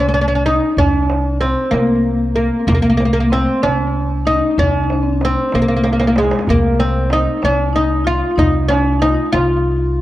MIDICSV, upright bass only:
0, 0, Header, 1, 2, 480
1, 0, Start_track
1, 0, Tempo, 634652
1, 581, Time_signature, 6, 3, 24, 8
1, 7575, End_track
2, 0, Start_track
2, 0, Title_t, "Upright bass"
2, 0, Program_c, 0, 32
2, 0, Note_on_c, 0, 36, 76
2, 437, Note_off_c, 0, 36, 0
2, 580, Note_on_c, 0, 36, 79
2, 1160, Note_off_c, 0, 36, 0
2, 1302, Note_on_c, 0, 36, 73
2, 1882, Note_off_c, 0, 36, 0
2, 2020, Note_on_c, 0, 36, 89
2, 2600, Note_off_c, 0, 36, 0
2, 2750, Note_on_c, 0, 36, 72
2, 3326, Note_off_c, 0, 36, 0
2, 3463, Note_on_c, 0, 36, 85
2, 4042, Note_off_c, 0, 36, 0
2, 4189, Note_on_c, 0, 36, 74
2, 4766, Note_off_c, 0, 36, 0
2, 4907, Note_on_c, 0, 36, 92
2, 5484, Note_off_c, 0, 36, 0
2, 5624, Note_on_c, 0, 36, 78
2, 6203, Note_off_c, 0, 36, 0
2, 6335, Note_on_c, 0, 36, 87
2, 6917, Note_off_c, 0, 36, 0
2, 7058, Note_on_c, 0, 36, 80
2, 7575, Note_off_c, 0, 36, 0
2, 7575, End_track
0, 0, End_of_file